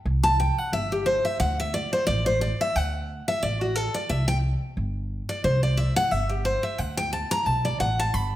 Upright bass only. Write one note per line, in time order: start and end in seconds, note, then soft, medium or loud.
0.05 0.49 C2 medium
0.72 1.16 G1 medium
1.40 1.84 D2 loud
2.08 2.51 A1 medium
2.76 3.19 D2 medium
3.43 3.87 A1 medium
4.10 4.54 C2 medium
4.77 5.21 G1 medium
5.44 5.88 C2 medium
6.12 6.55 G1 medium
6.79 7.23 D2 medium
7.46 7.75 B1 medium
7.80 8.09 A1 loud
8.14 8.36 G1 loud